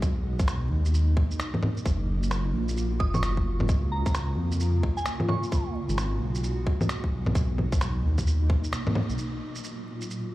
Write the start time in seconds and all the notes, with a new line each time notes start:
Already playing: B1 B2
0.01 A#3 D#4, kick, shaker
0.39 B1, kick, shaker
0.48 finger snap, shaker
0.70 D#2
0.85 shaker
0.94 shaker
1.17 kick
1.31 shaker
1.40 finger snap, shaker
1.54 low bongo
1.63 low bongo
1.77 shaker
1.85 F#1 F4 F#4, kick, shaker
2.23 shaker
2.31 finger snap, shaker
2.53 A#1
2.68 shaker
2.77 shaker
3.00 F#1 D#6, kick
3.14 C#6, low bongo, shaker
3.23 C#6, finger snap, shaker
3.37 kick
3.60 low bongo
3.69 C#2 C#3 A#3 F4, kick, shaker
3.92 A#5
4.06 C#2 A#5, kick, shaker
4.15 finger snap, shaker
4.37 F2
4.51 shaker
4.60 shaker
4.83 kick
4.97 G#5, shaker
5.06 finger snap, shaker
5.20 low bongo
5.29 C#6, low bongo
5.43 shaker
5.52 B2 G#3 F#4, kick, shaker
5.89 G#1, shaker
5.98 finger snap, shaker
6.20 B1
6.35 shaker
6.44 shaker
6.67 kick
6.81 low bongo, shaker
6.89 finger snap, shaker
7.04 kick
7.11 B1
7.26 low bongo
7.34 B2 A#3 D#4, kick, shaker
7.58 low bongo
7.72 B1, kick, shaker
7.81 finger snap, shaker
8.03 D#2
8.18 kick, shaker
8.27 shaker
8.50 kick
8.64 shaker
8.73 finger snap, shaker
8.87 low bongo
8.95 low bongo
9.09 B1, shaker
9.18 A#2 F#3 F4, shaker
9.55 shaker
9.64 shaker
10.01 shaker
10.10 shaker